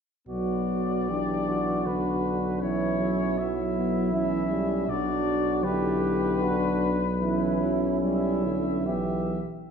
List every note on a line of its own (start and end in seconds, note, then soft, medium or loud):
0.28 4.84 B1 soft
0.28 1.11 F#3 soft
0.28 1.05 B3 soft
0.28 1.11 F#4 soft
0.28 1.87 D5 soft
1.09 1.87 E3 soft
1.09 1.86 D4 soft
1.09 1.49 G4 soft
1.48 2.61 F#4 soft
1.86 2.61 D3 soft
1.86 2.60 D4 soft
1.86 2.61 B4 soft
2.61 2.99 E3 soft
2.61 3.38 C#4 soft
2.61 3.37 E4 soft
2.61 3.40 C#5 soft
2.99 4.13 F#3 soft
3.38 3.75 B3 soft
3.38 4.86 E4 soft
3.38 4.13 E5 soft
3.76 4.12 B3 soft
4.12 4.49 E3 soft
4.12 4.87 C#4 soft
4.12 4.91 E5 soft
4.50 4.90 G3 soft
4.87 9.38 B1 soft
4.87 5.66 F#3 soft
4.87 5.64 D4 soft
4.87 5.65 F#4 soft
4.87 5.65 D5 soft
5.64 6.92 D3 soft
5.64 6.41 E4 soft
5.64 6.42 G4 soft
5.64 7.73 B4 soft
6.41 7.03 D4 soft
6.41 6.92 F#4 soft
7.20 7.62 E3 soft
7.20 8.84 C#4 soft
7.20 7.98 E4 soft
7.61 8.03 F#3 soft
8.00 8.47 G3 soft
8.00 8.88 E4 soft
8.00 8.84 E5 soft
8.45 8.90 D3 soft
8.86 9.42 E3 soft
8.86 9.42 B3 soft
8.86 9.41 G4 soft
8.86 9.41 E5 soft